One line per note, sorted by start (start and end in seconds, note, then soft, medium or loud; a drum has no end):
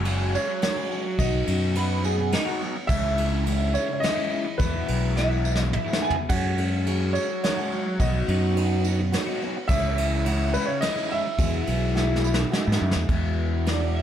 0.00 0.36 F#1 medium
0.00 0.29 F#5 loud
0.04 0.33 F#3 medium
0.04 0.33 G#3 medium
0.04 0.35 C#4 loud
0.04 0.33 F#4 medium
0.04 0.36 G#4 loud
0.04 ride medium
0.04 tambourine soft
0.34 0.77 F#3 medium
0.34 0.48 G#3 medium
0.34 0.48 C#4 medium
0.34 0.63 F#4 soft
0.34 0.47 G#4 medium
0.34 0.61 C#5 medium
0.34 tambourine medium
0.49 muted overdriven electric guitar stroke soft
0.62 1.18 F#3 medium
0.62 1.19 G#3 medium
0.62 1.20 C#4 medium
0.62 1.19 F#4 medium
0.62 1.21 C#5 medium
0.62 snare medium
0.62 ride medium
0.62 tambourine soft
0.76 0.89 G#3 medium
0.76 0.90 C#4 medium
0.76 0.91 G#4 medium
0.76 tambourine soft
0.89 1.17 F#3 medium
0.89 1.04 G#3 medium
0.89 1.04 C#4 medium
0.89 1.03 G#4 medium
0.89 tambourine soft
1.05 muted overdriven electric guitar stroke soft
1.18 1.41 B1 medium
1.18 1.74 B2 loud
1.18 1.45 F#3 loud
1.18 1.47 B3 loud
1.18 1.48 D#4 loud
1.18 1.48 F#4 loud
1.18 1.72 D#5 medium
1.18 kick loud
1.18 ride medium
1.18 tambourine medium
1.46 2.35 F#2 medium
1.46 1.75 F#3 medium
1.46 1.75 B3 medium
1.46 1.77 D#4 medium
1.46 1.77 F#4 medium
1.46 ride medium
1.75 2.32 B2 medium
1.75 2.01 F#3 loud
1.75 2.03 B3 loud
1.75 2.04 D#4 loud
1.75 2.05 F#4 loud
1.75 2.04 B4 loud
1.75 ride medium
1.75 tambourine soft
2.03 2.17 F#3 medium
2.03 2.17 B3 medium
2.03 2.17 D#4 medium
2.03 2.17 F#4 medium
2.03 2.32 G#4 medium
2.03 tambourine medium
2.18 muted overdriven electric guitar stroke medium
2.32 2.61 F#3 medium
2.32 2.62 B3 medium
2.32 2.60 D#4 loud
2.32 2.62 D#4 medium
2.32 2.60 F#4 medium
2.32 snare medium
2.32 ride medium
2.32 tambourine soft
2.45 2.60 B3 medium
2.45 2.61 D#4 medium
2.45 2.61 F#4 medium
2.45 tambourine soft
2.60 2.75 F#3 medium
2.60 2.75 B3 medium
2.60 2.74 D#4 medium
2.60 2.74 F#4 medium
2.60 tambourine soft
2.75 muted overdriven electric guitar stroke medium
2.87 3.76 C#2 medium
2.87 3.44 C#3 loud
2.87 3.17 E3 loud
2.87 3.19 G#3 loud
2.87 3.76 E5 loud
2.87 kick loud
2.87 crash medium
2.87 tambourine medium
2.92 3.19 C#4 loud
2.92 3.21 E4 loud
3.18 3.46 E3 medium
3.18 3.47 G#3 medium
3.18 3.47 C#4 medium
3.18 3.48 E4 medium
3.18 ride medium
3.45 4.03 C#3 medium
3.45 3.73 E3 loud
3.45 3.75 G#3 medium
3.45 3.75 C#4 loud
3.45 3.76 E4 loud
3.45 ride medium
3.45 tambourine soft
3.74 3.89 E3 medium
3.74 3.89 G#3 medium
3.74 3.88 C#4 medium
3.74 3.88 E4 medium
3.74 3.92 C#5 medium
3.74 tambourine medium
3.89 muted overdriven electric guitar stroke soft
3.93 4.02 C#5 medium
4.00 4.59 E3 medium
4.00 4.59 G#3 medium
4.00 4.54 D#5 loud
4.00 ride medium
4.00 tambourine soft
4.04 4.60 E4 medium
4.04 snare medium
4.17 4.31 G#3 medium
4.17 4.31 C#4 medium
4.17 4.32 E4 medium
4.17 tambourine soft
4.30 4.44 E3 medium
4.30 4.45 G#3 medium
4.30 4.45 C#4 medium
4.30 4.44 E4 medium
4.30 tambourine soft
4.45 muted overdriven electric guitar stroke soft
4.58 5.14 E2 loud
4.58 4.82 E2 medium
4.58 5.14 B2 loud
4.58 4.85 E3 loud
4.58 5.15 F#3 medium
4.58 4.87 G#3 loud
4.58 4.88 B3 loud
4.58 4.89 E4 loud
4.58 5.12 B4 medium
4.58 kick loud
4.58 ride medium
4.58 tambourine medium
4.87 5.76 B1 medium
4.87 5.15 E3 medium
4.87 5.17 G#3 medium
4.87 5.16 B3 medium
4.87 5.17 E4 medium
4.87 ride medium
5.15 5.73 E2 medium
5.15 5.73 B2 medium
5.15 5.42 E3 medium
5.15 5.73 F#3 medium
5.15 5.43 G#3 medium
5.15 5.44 B3 medium
5.15 5.45 E4 loud
5.15 5.72 E5 loud
5.15 snare medium
5.31 tambourine soft
5.44 5.58 E3 medium
5.44 5.58 G#3 medium
5.44 5.57 B3 medium
5.44 5.57 E4 medium
5.44 tambourine medium
5.56 muted overdriven electric guitar stroke medium
5.56 snare medium
5.73 6.30 F#3 medium
5.73 6.30 G#3 medium
5.73 6.31 B3 medium
5.73 6.31 E4 medium
5.73 6.01 E5 medium
5.73 mid tom medium
5.86 5.99 E3 medium
5.86 6.01 G#3 medium
5.86 6.02 B3 medium
5.86 6.03 E4 medium
5.86 tambourine soft
5.93 snare loud
6.00 6.15 E3 medium
6.00 6.15 G#3 medium
6.00 6.15 B3 medium
6.00 6.15 E4 medium
6.00 6.29 G#5 loud
6.00 tambourine soft
6.10 floor tom medium
6.16 muted overdriven electric guitar stroke soft
6.29 7.17 F#2 medium
6.29 6.57 F#3 medium
6.29 6.57 G#3 loud
6.29 6.58 C#4 loud
6.29 6.83 F#4 medium
6.29 6.60 F#4 loud
6.29 6.84 G#4 medium
6.29 6.84 C#5 medium
6.29 7.17 F#5 loud
6.29 kick loud
6.29 ride medium
6.29 tambourine medium
6.29 crash loud
6.57 6.86 F#3 medium
6.57 6.86 G#3 medium
6.57 6.88 C#4 medium
6.57 6.89 F#4 medium
6.57 ride medium
6.86 7.13 F#3 medium
6.86 7.14 G#3 medium
6.86 7.15 C#4 loud
6.86 7.40 F#4 medium
6.86 7.16 F#4 loud
6.86 7.41 G#4 medium
6.86 7.41 C#5 medium
6.86 ride medium
6.86 tambourine soft
7.13 7.57 F#3 medium
7.13 7.29 G#3 medium
7.13 7.29 C#4 medium
7.13 7.42 C#5 medium
7.13 tambourine medium
7.17 7.29 F#4 medium
7.30 muted overdriven electric guitar stroke medium
7.43 7.72 F#3 medium
7.43 7.72 G#3 medium
7.43 7.72 C#4 medium
7.43 7.97 F#4 medium
7.43 7.71 F#4 medium
7.43 7.97 G#4 medium
7.43 8.02 C#5 medium
7.43 7.98 E5 medium
7.43 snare medium
7.43 ride medium
7.43 tambourine soft
7.57 7.71 G#3 medium
7.57 7.72 C#4 medium
7.57 7.73 F#4 medium
7.57 tambourine soft
7.71 7.98 F#3 medium
7.71 7.86 G#3 medium
7.71 7.85 C#4 medium
7.71 7.85 F#4 medium
7.71 tambourine soft
7.86 muted overdriven electric guitar stroke soft
7.99 8.22 B1 medium
7.99 8.55 B2 loud
7.99 8.27 F#3 loud
7.99 8.28 B3 loud
7.99 8.30 D#4 loud
7.99 8.53 F#4 medium
7.99 8.30 F#4 loud
7.99 8.54 B4 medium
7.99 8.53 D#5 medium
7.99 8.54 D#5 loud
7.99 kick loud
7.99 ride medium
7.99 tambourine medium
8.28 9.15 F#2 medium
8.28 8.57 F#3 medium
8.28 8.57 B3 medium
8.28 8.59 D#4 medium
8.28 8.58 F#4 medium
8.28 ride medium
8.55 9.13 B2 medium
8.55 8.83 F#3 loud
8.55 8.85 B3 loud
8.55 8.85 D#4 loud
8.55 9.10 F#4 medium
8.55 8.87 F#4 loud
8.55 9.10 B4 medium
8.55 9.11 D#5 medium
8.55 ride medium
8.55 tambourine soft
8.84 8.99 F#3 medium
8.84 8.99 B3 medium
8.84 8.98 D#4 medium
8.84 8.98 F#4 medium
8.84 tambourine medium
8.99 muted overdriven electric guitar stroke soft
9.12 9.41 F#3 medium
9.12 9.42 B3 medium
9.12 9.42 D#4 medium
9.12 9.66 F#4 medium
9.12 9.41 F#4 medium
9.12 9.67 B4 medium
9.12 9.67 C#5 medium
9.12 snare medium
9.12 ride medium
9.12 tambourine soft
9.26 9.41 B3 medium
9.26 9.42 D#4 medium
9.26 9.43 F#4 medium
9.26 tambourine soft
9.41 9.56 F#3 medium
9.41 9.56 B3 medium
9.41 9.56 D#4 loud
9.41 9.56 F#4 loud
9.41 tambourine soft
9.57 muted overdriven electric guitar stroke soft
9.68 10.56 C#2 medium
9.68 10.24 C#3 loud
9.68 9.97 E3 loud
9.68 9.99 G#3 loud
9.68 10.23 E4 medium
9.68 10.23 C#5 medium
9.68 10.21 E5 loud
9.68 10.24 D#6 loud
9.68 kick loud
9.68 crash medium
9.68 tambourine medium
9.72 9.99 C#4 loud
9.72 10.01 E4 loud
9.98 10.26 E3 medium
9.98 10.26 G#3 medium
9.98 10.27 C#4 medium
9.98 10.28 E4 medium
9.98 ride medium
10.25 10.83 C#3 medium
10.25 10.54 E3 loud
10.25 10.55 G#3 loud
10.25 10.55 C#4 loud
10.25 10.54 D#4 medium
10.25 10.79 E4 medium
10.25 10.57 E4 loud
10.25 10.80 C#5 medium
10.25 10.80 F#5 medium
10.25 ride medium
10.25 tambourine soft
10.54 10.69 E3 medium
10.54 10.69 G#3 medium
10.54 10.68 C#4 medium
10.54 10.83 D#4 soft
10.54 10.69 E4 medium
10.54 10.69 B4 medium
10.54 tambourine medium
10.66 10.82 C#5 medium
10.66 muted overdriven electric guitar stroke medium
10.81 11.11 E3 medium
10.81 11.11 G#3 medium
10.81 11.11 D#4 medium
10.81 11.36 E4 medium
10.81 11.09 E4 medium
10.81 11.36 C#5 medium
10.81 11.11 D#5 loud
10.81 11.36 D#5 medium
10.81 snare medium
10.81 ride medium
10.81 tambourine soft
10.96 11.10 G#3 medium
10.96 11.10 C#4 medium
10.96 11.12 E4 medium
10.96 tambourine soft
11.10 11.26 E3 medium
11.10 11.25 G#3 medium
11.10 11.24 C#4 medium
11.10 11.40 D#4 soft
11.10 11.25 E4 medium
11.10 12.49 E5 loud
11.10 tambourine soft
11.25 muted overdriven electric guitar stroke medium
11.38 11.61 E2 medium
11.38 11.95 E2 loud
11.38 11.96 B2 loud
11.38 11.65 E3 medium
11.38 11.94 F#3 medium
11.38 11.66 G#3 loud
11.38 11.68 B3 loud
11.38 11.69 E4 loud
11.38 11.92 F#4 medium
11.38 11.93 G#4 medium
11.38 11.93 E5 loud
11.38 kick loud
11.38 ride medium
11.38 tambourine loud
11.53 tambourine soft
11.67 12.44 B1 medium
11.67 11.96 E3 medium
11.67 11.97 G#3 medium
11.67 11.97 B3 medium
11.67 11.98 E4 medium
11.67 ride medium
11.67 tambourine soft
11.95 12.53 E2 medium
11.95 12.53 B2 medium
11.95 12.23 E3 medium
11.95 12.51 F#3 medium
11.95 12.24 G#3 loud
11.95 12.25 B3 loud
11.95 12.49 F#4 medium
11.95 12.50 G#4 medium
11.95 12.50 E5 medium
11.95 snare medium
11.99 12.26 E4 loud
12.16 snare medium
12.24 12.39 E3 medium
12.24 12.39 G#3 medium
12.24 12.39 B3 medium
12.24 12.38 E4 medium
12.24 12.51 B5 medium
12.24 tambourine medium
12.34 snare medium
12.40 muted overdriven electric guitar stroke medium
12.51 13.08 F#3 medium
12.51 13.09 G#3 medium
12.51 13.09 B3 medium
12.51 13.09 E4 medium
12.51 13.06 F#4 medium
12.51 13.06 G#4 medium
12.51 13.07 D#5 medium
12.51 12.65 G#5 medium
12.51 snare medium
12.51 tambourine soft
12.66 12.80 G#2 medium
12.66 12.80 E3 medium
12.66 12.81 G#3 medium
12.66 12.82 B3 medium
12.66 12.83 E4 medium
12.66 12.79 E5 medium
12.66 tambourine soft
12.72 snare medium
12.80 12.94 F#2 medium
12.80 12.95 E3 medium
12.80 12.95 G#3 medium
12.80 12.95 B3 medium
12.80 12.94 E4 loud
12.80 13.07 E5 medium
12.91 snare medium
12.95 13.08 E2 medium
12.95 muted overdriven electric guitar stroke soft
12.95 tambourine soft
13.09 14.02 E2 medium
13.09 14.02 B2 medium
13.09 14.02 E3 loud
13.09 13.64 F#3 medium
13.09 14.02 G#3 medium
13.09 14.02 B3 medium
13.09 14.02 E4 loud
13.09 kick loud
13.09 ride medium
13.65 14.02 F#3 medium
13.65 14.02 G#3 medium
13.65 14.02 B3 medium
13.65 14.02 E4 medium
13.65 13.95 D5 medium
13.65 snare medium
13.65 ride medium
13.95 14.02 E5 medium